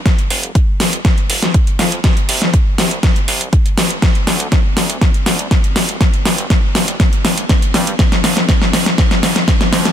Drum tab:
HH |xxoxx-oxxxoxxxox|xxo-x-oxxxoxxxox|xxoxx-oxxxoxxxox|xxoxx-oxxxoxxxox|
SD |o-----o-o--o--o-|o--o--o-o-----o-|o-o-o-o-o-o-o-o-|o-o-o-o-o-o-o-o-|
BD |o---o---o---o---|o---o---o---o---|o---o---o---o---|o---o---o---o---|

HH |xxoxx-oxxxoxxxox|
SD |oooooooooooooooo|
BD |o---o---o---o---|